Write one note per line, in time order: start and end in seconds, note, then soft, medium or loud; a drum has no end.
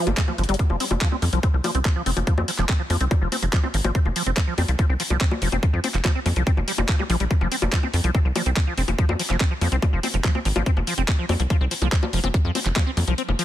0.07 0.14 G1 medium
0.07 0.11 C4 loud
0.07 closed hi-hat medium
0.07 high bongo medium
0.17 0.22 G#3 medium
0.17 kick loud
0.17 clap loud
0.17 closed hi-hat medium
0.28 0.32 F3 medium
0.28 high bongo soft
0.38 0.45 G1 medium
0.38 0.43 F3 medium
0.38 closed hi-hat medium
0.44 closed hi-hat medium
0.49 0.56 G1 medium
0.49 0.55 G3 loud
0.49 closed hi-hat medium
0.54 closed hi-hat medium
0.59 0.62 F3 medium
0.59 kick loud
0.59 closed hi-hat medium
0.70 0.77 F1 medium
0.70 0.76 F3 medium
0.70 high bongo soft
0.80 0.85 C4 medium
0.80 open hi-hat loud
0.91 0.98 F1 medium
0.91 0.93 F3 medium
0.91 closed hi-hat medium
0.91 high bongo medium
1.01 1.08 F3 medium
1.01 kick loud
1.01 clap loud
1.01 closed hi-hat medium
1.12 1.16 C4 medium
1.12 high bongo soft
1.22 1.29 F2 loud
1.22 1.25 F3 medium
1.22 open hi-hat medium
1.33 1.40 C2 medium
1.33 1.39 F3 medium
1.33 closed hi-hat medium
1.43 1.48 C4 medium
1.43 kick loud
1.43 closed hi-hat medium
1.43 high bongo soft
1.54 1.61 C2 medium
1.54 1.56 F3 medium
1.64 1.71 F3 medium
1.64 open hi-hat loud
1.64 high bongo medium
1.75 1.82 C2 medium
1.75 1.79 C4 medium
1.75 closed hi-hat medium
1.85 1.88 F3 medium
1.85 kick loud
1.85 clap loud
1.85 closed hi-hat medium
1.85 high bongo soft
1.96 2.02 F3 medium
2.06 2.13 F1 medium
2.06 2.11 C4 medium
2.06 open hi-hat loud
2.17 2.24 F1 medium
2.17 2.19 F3 medium
2.17 closed hi-hat medium
2.17 high bongo soft
2.27 2.34 F3 medium
2.27 kick loud
2.27 closed hi-hat medium
2.38 2.45 F2 medium
2.38 2.42 C4 medium
2.38 high bongo medium
2.48 2.51 F3 medium
2.48 open hi-hat loud
2.59 2.66 F1 medium
2.59 2.65 F3 medium
2.59 clap soft
2.59 closed hi-hat medium
2.59 high bongo soft
2.69 2.73 C4 medium
2.69 kick loud
2.69 clap loud
2.69 closed hi-hat medium
2.80 2.82 F3 medium
2.90 2.97 F2 loud
2.90 2.97 F3 medium
2.90 open hi-hat loud
2.90 high bongo soft
3.01 3.07 C2 medium
3.01 3.05 C4 medium
3.01 closed hi-hat medium
3.11 3.14 F3 medium
3.11 kick loud
3.11 closed hi-hat medium
3.11 high bongo medium
3.21 3.28 F1 medium
3.21 3.28 F3 medium
3.32 3.36 C4 medium
3.32 open hi-hat loud
3.32 high bongo soft
3.42 3.49 F1 medium
3.42 3.45 F3 medium
3.42 closed hi-hat medium
3.53 3.60 F3 medium
3.53 kick loud
3.53 clap loud
3.53 closed hi-hat medium
3.63 3.68 C4 medium
3.63 high bongo soft
3.74 3.81 G#1 loud
3.74 3.77 F3 medium
3.74 open hi-hat loud
3.84 3.91 G#1 medium
3.84 3.91 F3 medium
3.84 closed hi-hat medium
3.84 high bongo medium
3.95 3.99 C4 medium
3.95 kick loud
3.95 closed hi-hat medium
4.05 4.12 F1 medium
4.05 4.08 F3 medium
4.05 high bongo soft
4.16 4.23 F3 medium
4.16 open hi-hat loud
4.26 4.33 F1 medium
4.26 4.31 C4 medium
4.26 closed hi-hat medium
4.37 4.40 F3 medium
4.37 kick loud
4.37 clap loud
4.37 closed hi-hat medium
4.37 high bongo soft
4.47 4.54 F3 medium
4.58 4.65 F2 loud
4.58 4.62 C4 medium
4.58 open hi-hat loud
4.58 high bongo medium
4.68 4.75 C2 medium
4.68 4.71 F3 medium
4.68 closed hi-hat medium
4.79 4.85 F3 medium
4.79 kick loud
4.79 closed hi-hat medium
4.79 high bongo soft
4.89 4.96 C2 medium
4.89 4.94 C4 medium
5.00 5.03 F3 medium
5.00 open hi-hat loud
5.10 5.17 C2 medium
5.10 5.17 F3 medium
5.10 closed hi-hat medium
5.10 high bongo soft
5.21 5.25 C4 medium
5.21 kick loud
5.21 clap loud
5.21 closed hi-hat medium
5.31 5.34 F3 medium
5.31 high bongo medium
5.42 5.49 F1 medium
5.42 5.48 F3 medium
5.42 open hi-hat loud
5.52 5.59 F1 medium
5.52 5.57 C4 medium
5.52 closed hi-hat medium
5.52 high bongo soft
5.63 5.65 F3 medium
5.63 kick loud
5.63 closed hi-hat medium
5.73 5.80 F2 medium
5.73 5.80 F3 medium
5.84 5.88 C4 medium
5.84 open hi-hat loud
5.84 high bongo soft
5.94 6.01 F1 medium
5.94 5.97 F3 medium
5.94 clap soft
5.94 closed hi-hat medium
6.05 6.11 F3 medium
6.05 kick loud
6.05 clap loud
6.05 closed hi-hat medium
6.05 high bongo medium
6.15 6.20 C4 medium
6.26 6.33 F2 loud
6.26 6.28 F3 medium
6.26 open hi-hat loud
6.26 high bongo soft
6.36 6.43 C2 medium
6.36 6.43 F3 medium
6.36 closed hi-hat medium
6.47 6.51 C4 medium
6.47 kick loud
6.47 closed hi-hat medium
6.57 6.64 F1 medium
6.57 6.60 F3 medium
6.57 high bongo soft
6.68 6.72 G3 medium
6.68 open hi-hat loud
6.78 6.85 F1 medium
6.78 6.81 F3 loud
6.78 closed hi-hat medium
6.78 high bongo medium
6.89 6.95 F3 medium
6.89 kick loud
6.89 clap loud
6.89 closed hi-hat medium
6.99 7.04 G3 loud
6.99 high bongo soft
7.10 7.17 A#1 loud
7.10 7.16 F3 loud
7.10 open hi-hat loud
7.20 7.27 A#1 medium
7.20 7.25 G3 medium
7.20 closed hi-hat medium
7.31 7.33 F3 medium
7.31 kick loud
7.31 closed hi-hat medium
7.41 7.48 F1 medium
7.41 7.48 F3 medium
7.41 high bongo soft
7.52 7.56 C4 medium
7.52 open hi-hat loud
7.62 7.69 F1 medium
7.62 7.65 F3 medium
7.62 closed hi-hat medium
7.62 high bongo medium
7.73 7.79 F3 medium
7.73 kick loud
7.73 clap loud
7.73 closed hi-hat medium
7.83 7.87 C4 medium
7.83 high bongo soft
7.94 8.01 F2 loud
7.94 7.96 F3 medium
7.94 open hi-hat loud
8.04 8.11 C2 medium
8.04 8.11 F3 medium
8.04 closed hi-hat medium
8.15 8.19 C4 medium
8.15 kick loud
8.15 closed hi-hat medium
8.15 high bongo soft
8.25 8.32 C2 medium
8.25 8.28 F3 medium
8.36 8.42 F3 medium
8.36 open hi-hat loud
8.36 high bongo medium
8.46 8.53 C2 medium
8.46 8.50 C4 medium
8.46 closed hi-hat medium
8.57 8.59 F3 medium
8.57 kick loud
8.57 clap loud
8.57 closed hi-hat medium
8.57 high bongo soft
8.67 8.74 F3 medium
8.78 8.84 F1 medium
8.78 8.82 C4 medium
8.78 open hi-hat medium
8.88 8.95 F1 medium
8.88 8.91 F3 medium
8.88 closed hi-hat medium
8.88 high bongo soft
8.98 9.05 F3 medium
8.98 kick loud
8.98 closed hi-hat medium
9.09 9.16 F2 medium
9.09 9.13 C4 medium
9.09 high bongo medium
9.19 9.22 F3 medium
9.19 open hi-hat loud
9.30 9.37 F1 medium
9.30 9.37 F3 medium
9.30 clap soft
9.30 closed hi-hat medium
9.30 high bongo soft
9.40 9.45 C4 medium
9.40 kick loud
9.40 clap loud
9.40 closed hi-hat medium
9.51 9.54 F3 medium
9.61 9.68 F2 loud
9.61 9.68 F3 medium
9.61 open hi-hat loud
9.61 high bongo soft
9.72 9.79 C2 medium
9.72 9.76 C4 medium
9.72 closed hi-hat medium
9.82 9.85 F3 medium
9.82 kick loud
9.82 closed hi-hat medium
9.82 high bongo medium
9.93 10.00 F1 medium
9.93 9.99 F3 medium
10.03 10.08 C4 medium
10.03 open hi-hat loud
10.03 high bongo soft
10.14 10.21 F1 medium
10.14 10.16 F3 medium
10.14 closed hi-hat medium
10.24 10.31 F3 medium
10.24 kick loud
10.24 clap loud
10.24 closed hi-hat medium
10.35 10.39 C4 medium
10.35 high bongo soft
10.45 10.52 G#1 medium
10.45 10.48 F3 medium
10.45 open hi-hat medium
10.56 10.63 G#1 medium
10.56 10.62 F3 medium
10.56 closed hi-hat medium
10.56 high bongo medium
10.66 10.71 C4 medium
10.66 kick loud
10.66 closed hi-hat medium
10.77 10.84 F1 medium
10.77 10.79 F3 medium
10.77 high bongo soft
10.87 10.94 F3 medium
10.87 open hi-hat loud
10.98 11.05 F1 medium
10.98 11.02 C4 medium
10.98 closed hi-hat medium
11.08 11.11 F3 medium
11.08 kick loud
11.08 clap loud
11.08 closed hi-hat medium
11.08 high bongo soft
11.19 11.25 F3 medium
11.29 11.36 F2 loud
11.29 11.34 C4 medium
11.29 open hi-hat medium
11.29 high bongo medium
11.40 11.47 C2 medium
11.40 11.42 F3 medium
11.40 closed hi-hat medium
11.50 11.57 F3 medium
11.50 kick loud
11.50 closed hi-hat medium
11.50 high bongo soft
11.61 11.68 C2 medium
11.61 11.65 C4 medium
11.71 11.74 F3 medium
11.71 open hi-hat loud
11.82 11.89 C2 medium
11.82 11.88 F3 medium
11.82 closed hi-hat medium
11.82 high bongo soft
11.92 11.97 C4 medium
11.92 kick loud
11.92 clap loud
11.92 closed hi-hat medium
12.03 12.05 F3 medium
12.03 high bongo medium
12.13 12.20 F1 loud
12.13 12.20 F3 medium
12.13 open hi-hat medium
12.24 12.31 F1 medium
12.24 12.28 C4 medium
12.24 closed hi-hat medium
12.24 high bongo soft
12.34 12.37 F3 medium
12.34 kick loud
12.34 closed hi-hat medium
12.45 12.52 F2 medium
12.45 12.51 F3 medium
12.55 12.60 C4 medium
12.55 open hi-hat loud
12.55 high bongo soft
12.66 12.73 F1 medium
12.66 12.68 F3 medium
12.66 clap soft
12.66 closed hi-hat medium
12.76 12.83 F3 medium
12.76 kick loud
12.76 clap loud
12.76 closed hi-hat medium
12.76 high bongo medium
12.87 12.91 C4 medium
12.97 13.04 F2 loud
12.97 13.00 F3 medium
12.97 open hi-hat loud
12.97 high bongo soft
13.08 13.15 C2 medium
13.08 13.14 F3 medium
13.08 closed hi-hat medium
13.18 13.22 C4 medium
13.18 closed hi-hat medium
13.29 13.35 F1 medium
13.29 13.31 F3 medium
13.29 high bongo soft
13.39 13.45 F3 loud
13.39 open hi-hat loud